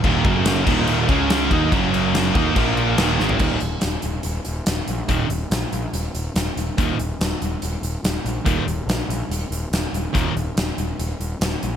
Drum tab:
CC |x-x-x-x-x-x-x-x-|x-x-x-x-x-x-x---|x---------------|----------------|
HH |----------------|----------------|--x-x-x-x-x-x-x-|x-x-x-x-x-x-x-x-|
SD |----o-o-----o---|----o-------o-o-|----o-------o---|----o-------o---|
FT |----------------|---------------o|----------------|----------------|
BD |o-o---o---o---o-|o-----o-o-------|o---------------|o---------------|

CC |----------------|----------------|----------------|
HH |x-x-x-x-x-x-x-x-|x-x-x-x-x-x-x-x-|x-x-x-x-x-x-x-x-|
SD |----o-------o---|----o-------o---|----o-------o---|
FT |----------------|----------------|----------------|
BD |o---------------|o---------------|o---------------|